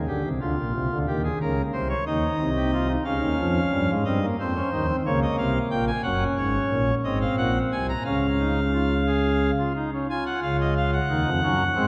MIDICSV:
0, 0, Header, 1, 2, 480
1, 0, Start_track
1, 0, Key_signature, -5, "major"
1, 0, Tempo, 661521
1, 65, Time_signature, 6, 3, 24, 8
1, 4385, Tempo, 671892
1, 8550, End_track
2, 0, Start_track
2, 0, Title_t, "Pipe organ"
2, 0, Program_c, 0, 19
2, 55, Note_on_c, 0, 67, 65
2, 56, Note_on_c, 0, 50, 60
2, 57, Note_on_c, 0, 38, 60
2, 164, Note_off_c, 0, 38, 0
2, 164, Note_off_c, 0, 50, 0
2, 176, Note_on_c, 0, 36, 52
2, 177, Note_on_c, 0, 48, 53
2, 208, Note_off_c, 0, 67, 0
2, 284, Note_off_c, 0, 36, 0
2, 285, Note_off_c, 0, 48, 0
2, 296, Note_on_c, 0, 38, 65
2, 297, Note_on_c, 0, 50, 60
2, 297, Note_on_c, 0, 65, 63
2, 404, Note_off_c, 0, 38, 0
2, 405, Note_off_c, 0, 50, 0
2, 420, Note_on_c, 0, 34, 58
2, 420, Note_on_c, 0, 46, 60
2, 526, Note_off_c, 0, 46, 0
2, 527, Note_off_c, 0, 34, 0
2, 533, Note_on_c, 0, 36, 67
2, 535, Note_on_c, 0, 48, 68
2, 643, Note_off_c, 0, 36, 0
2, 644, Note_off_c, 0, 48, 0
2, 660, Note_on_c, 0, 50, 57
2, 662, Note_on_c, 0, 38, 56
2, 715, Note_off_c, 0, 65, 0
2, 767, Note_off_c, 0, 50, 0
2, 768, Note_off_c, 0, 38, 0
2, 776, Note_on_c, 0, 51, 73
2, 778, Note_on_c, 0, 39, 62
2, 778, Note_on_c, 0, 67, 77
2, 886, Note_off_c, 0, 67, 0
2, 899, Note_on_c, 0, 68, 63
2, 929, Note_off_c, 0, 51, 0
2, 930, Note_off_c, 0, 39, 0
2, 1006, Note_off_c, 0, 68, 0
2, 1025, Note_on_c, 0, 70, 77
2, 1026, Note_on_c, 0, 37, 70
2, 1026, Note_on_c, 0, 49, 67
2, 1175, Note_off_c, 0, 37, 0
2, 1175, Note_off_c, 0, 49, 0
2, 1175, Note_off_c, 0, 70, 0
2, 1254, Note_on_c, 0, 72, 71
2, 1257, Note_on_c, 0, 48, 64
2, 1259, Note_on_c, 0, 36, 64
2, 1363, Note_off_c, 0, 72, 0
2, 1372, Note_on_c, 0, 73, 68
2, 1410, Note_off_c, 0, 48, 0
2, 1411, Note_off_c, 0, 36, 0
2, 1482, Note_off_c, 0, 73, 0
2, 1495, Note_on_c, 0, 63, 62
2, 1497, Note_on_c, 0, 75, 59
2, 1498, Note_on_c, 0, 51, 72
2, 1500, Note_on_c, 0, 39, 80
2, 1649, Note_off_c, 0, 51, 0
2, 1651, Note_off_c, 0, 39, 0
2, 1736, Note_on_c, 0, 36, 70
2, 1736, Note_on_c, 0, 48, 77
2, 1809, Note_off_c, 0, 63, 0
2, 1861, Note_on_c, 0, 67, 69
2, 1966, Note_off_c, 0, 67, 0
2, 1981, Note_on_c, 0, 65, 70
2, 2086, Note_off_c, 0, 65, 0
2, 2096, Note_on_c, 0, 63, 66
2, 2120, Note_off_c, 0, 75, 0
2, 2153, Note_off_c, 0, 36, 0
2, 2153, Note_off_c, 0, 48, 0
2, 2203, Note_off_c, 0, 63, 0
2, 2210, Note_on_c, 0, 61, 73
2, 2212, Note_on_c, 0, 37, 78
2, 2212, Note_on_c, 0, 49, 84
2, 2212, Note_on_c, 0, 77, 74
2, 2322, Note_off_c, 0, 37, 0
2, 2322, Note_off_c, 0, 49, 0
2, 2332, Note_on_c, 0, 51, 74
2, 2333, Note_on_c, 0, 39, 72
2, 2442, Note_off_c, 0, 39, 0
2, 2442, Note_off_c, 0, 51, 0
2, 2455, Note_on_c, 0, 41, 75
2, 2459, Note_on_c, 0, 53, 77
2, 2607, Note_off_c, 0, 41, 0
2, 2610, Note_off_c, 0, 53, 0
2, 2692, Note_on_c, 0, 55, 74
2, 2694, Note_on_c, 0, 43, 74
2, 2801, Note_off_c, 0, 55, 0
2, 2802, Note_off_c, 0, 43, 0
2, 2826, Note_on_c, 0, 44, 73
2, 2827, Note_on_c, 0, 56, 80
2, 2836, Note_off_c, 0, 61, 0
2, 2837, Note_off_c, 0, 77, 0
2, 2929, Note_off_c, 0, 44, 0
2, 2929, Note_off_c, 0, 56, 0
2, 2937, Note_on_c, 0, 43, 73
2, 2938, Note_on_c, 0, 60, 76
2, 2939, Note_on_c, 0, 55, 76
2, 2939, Note_on_c, 0, 75, 81
2, 3044, Note_off_c, 0, 60, 0
2, 3067, Note_on_c, 0, 58, 62
2, 3088, Note_off_c, 0, 43, 0
2, 3089, Note_off_c, 0, 55, 0
2, 3089, Note_off_c, 0, 75, 0
2, 3169, Note_off_c, 0, 58, 0
2, 3190, Note_on_c, 0, 53, 70
2, 3190, Note_on_c, 0, 72, 74
2, 3191, Note_on_c, 0, 60, 65
2, 3192, Note_on_c, 0, 41, 70
2, 3291, Note_off_c, 0, 60, 0
2, 3309, Note_on_c, 0, 61, 70
2, 3337, Note_off_c, 0, 53, 0
2, 3338, Note_off_c, 0, 41, 0
2, 3410, Note_off_c, 0, 61, 0
2, 3427, Note_on_c, 0, 51, 76
2, 3427, Note_on_c, 0, 63, 71
2, 3428, Note_on_c, 0, 39, 79
2, 3529, Note_off_c, 0, 63, 0
2, 3545, Note_on_c, 0, 60, 71
2, 3574, Note_off_c, 0, 51, 0
2, 3575, Note_off_c, 0, 39, 0
2, 3599, Note_off_c, 0, 72, 0
2, 3647, Note_off_c, 0, 60, 0
2, 3669, Note_on_c, 0, 58, 72
2, 3670, Note_on_c, 0, 49, 75
2, 3671, Note_on_c, 0, 37, 73
2, 3672, Note_on_c, 0, 73, 77
2, 3771, Note_off_c, 0, 73, 0
2, 3790, Note_on_c, 0, 75, 74
2, 3816, Note_off_c, 0, 49, 0
2, 3817, Note_off_c, 0, 37, 0
2, 3890, Note_off_c, 0, 75, 0
2, 3902, Note_on_c, 0, 36, 79
2, 3904, Note_on_c, 0, 48, 79
2, 3904, Note_on_c, 0, 77, 80
2, 4051, Note_off_c, 0, 36, 0
2, 4052, Note_off_c, 0, 48, 0
2, 4052, Note_off_c, 0, 77, 0
2, 4141, Note_on_c, 0, 46, 70
2, 4142, Note_on_c, 0, 34, 72
2, 4142, Note_on_c, 0, 79, 79
2, 4245, Note_off_c, 0, 79, 0
2, 4261, Note_on_c, 0, 80, 76
2, 4285, Note_off_c, 0, 58, 0
2, 4290, Note_off_c, 0, 46, 0
2, 4291, Note_off_c, 0, 34, 0
2, 4365, Note_off_c, 0, 80, 0
2, 4376, Note_on_c, 0, 78, 80
2, 4377, Note_on_c, 0, 30, 67
2, 4377, Note_on_c, 0, 61, 69
2, 4379, Note_on_c, 0, 42, 66
2, 4526, Note_off_c, 0, 30, 0
2, 4526, Note_off_c, 0, 78, 0
2, 4528, Note_off_c, 0, 42, 0
2, 4615, Note_on_c, 0, 44, 68
2, 4617, Note_on_c, 0, 32, 66
2, 4618, Note_on_c, 0, 73, 77
2, 4765, Note_off_c, 0, 44, 0
2, 4766, Note_off_c, 0, 32, 0
2, 4853, Note_on_c, 0, 34, 72
2, 4857, Note_on_c, 0, 46, 73
2, 4996, Note_off_c, 0, 61, 0
2, 5004, Note_off_c, 0, 34, 0
2, 5007, Note_off_c, 0, 46, 0
2, 5031, Note_off_c, 0, 73, 0
2, 5097, Note_on_c, 0, 44, 67
2, 5098, Note_on_c, 0, 32, 68
2, 5099, Note_on_c, 0, 60, 74
2, 5099, Note_on_c, 0, 75, 74
2, 5202, Note_off_c, 0, 75, 0
2, 5222, Note_on_c, 0, 77, 68
2, 5247, Note_off_c, 0, 32, 0
2, 5247, Note_off_c, 0, 44, 0
2, 5324, Note_off_c, 0, 77, 0
2, 5335, Note_on_c, 0, 46, 68
2, 5338, Note_on_c, 0, 34, 75
2, 5339, Note_on_c, 0, 78, 84
2, 5485, Note_off_c, 0, 46, 0
2, 5488, Note_off_c, 0, 34, 0
2, 5488, Note_off_c, 0, 78, 0
2, 5583, Note_on_c, 0, 36, 64
2, 5583, Note_on_c, 0, 80, 77
2, 5585, Note_on_c, 0, 48, 66
2, 5685, Note_off_c, 0, 80, 0
2, 5703, Note_on_c, 0, 82, 77
2, 5720, Note_off_c, 0, 60, 0
2, 5732, Note_off_c, 0, 36, 0
2, 5733, Note_off_c, 0, 48, 0
2, 5805, Note_off_c, 0, 82, 0
2, 5820, Note_on_c, 0, 37, 61
2, 5820, Note_on_c, 0, 77, 66
2, 5823, Note_on_c, 0, 49, 66
2, 5823, Note_on_c, 0, 61, 63
2, 5972, Note_off_c, 0, 61, 0
2, 6063, Note_on_c, 0, 63, 60
2, 6213, Note_off_c, 0, 63, 0
2, 6306, Note_on_c, 0, 65, 73
2, 6456, Note_off_c, 0, 65, 0
2, 6547, Note_on_c, 0, 68, 70
2, 6860, Note_off_c, 0, 68, 0
2, 6862, Note_off_c, 0, 77, 0
2, 6863, Note_off_c, 0, 37, 0
2, 6864, Note_off_c, 0, 49, 0
2, 6915, Note_on_c, 0, 65, 64
2, 7018, Note_off_c, 0, 65, 0
2, 7041, Note_on_c, 0, 63, 65
2, 7141, Note_off_c, 0, 63, 0
2, 7160, Note_on_c, 0, 61, 63
2, 7261, Note_off_c, 0, 61, 0
2, 7279, Note_on_c, 0, 65, 68
2, 7283, Note_on_c, 0, 80, 71
2, 7382, Note_off_c, 0, 80, 0
2, 7398, Note_on_c, 0, 78, 64
2, 7498, Note_off_c, 0, 78, 0
2, 7518, Note_on_c, 0, 49, 76
2, 7519, Note_on_c, 0, 77, 67
2, 7521, Note_on_c, 0, 37, 85
2, 7618, Note_off_c, 0, 77, 0
2, 7645, Note_on_c, 0, 75, 69
2, 7741, Note_off_c, 0, 75, 0
2, 7763, Note_on_c, 0, 77, 84
2, 7860, Note_off_c, 0, 77, 0
2, 7874, Note_on_c, 0, 78, 64
2, 7891, Note_off_c, 0, 65, 0
2, 7924, Note_off_c, 0, 49, 0
2, 7926, Note_off_c, 0, 37, 0
2, 7994, Note_on_c, 0, 51, 95
2, 7994, Note_on_c, 0, 63, 81
2, 7995, Note_on_c, 0, 39, 94
2, 8094, Note_off_c, 0, 39, 0
2, 8094, Note_off_c, 0, 51, 0
2, 8115, Note_on_c, 0, 53, 85
2, 8116, Note_on_c, 0, 41, 74
2, 8139, Note_off_c, 0, 63, 0
2, 8213, Note_off_c, 0, 53, 0
2, 8214, Note_off_c, 0, 41, 0
2, 8235, Note_on_c, 0, 42, 100
2, 8236, Note_on_c, 0, 61, 81
2, 8237, Note_on_c, 0, 54, 101
2, 8379, Note_off_c, 0, 42, 0
2, 8380, Note_off_c, 0, 54, 0
2, 8380, Note_off_c, 0, 61, 0
2, 8467, Note_on_c, 0, 44, 95
2, 8467, Note_on_c, 0, 60, 78
2, 8469, Note_on_c, 0, 56, 101
2, 8550, Note_off_c, 0, 44, 0
2, 8550, Note_off_c, 0, 56, 0
2, 8550, Note_off_c, 0, 60, 0
2, 8550, Note_off_c, 0, 78, 0
2, 8550, End_track
0, 0, End_of_file